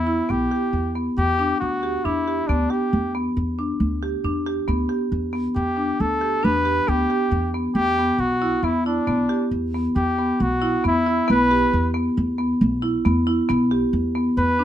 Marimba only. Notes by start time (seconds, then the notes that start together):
0.07 E4
0.29 B3
0.51 G4
0.95 B3
1.39 D4
1.83 G4
2.05 D4
2.28 G4
2.49 B3
2.70 G4
3.15 B3
3.59 D4
4.03 G4
4.25 D4
4.46 G4
4.68 B3
4.89 G4
5.33 B3
5.77 D4
6.21 G4
6.43 D4
6.65 G4
6.87 B3
7.10 G4
7.54 B3
7.99 B3
8.42 E4
8.64 B3
8.86 E4
9.07 B3
9.29 G4
9.74 B3
10.18 B3
10.62 E4
10.84 B3
11.06 E4
11.28 B3
11.51 G4
11.94 B3
12.38 B3
12.82 E4
13.05 B3
13.27 E4
13.49 B3
13.71 G4
14.15 B3
14.59 D4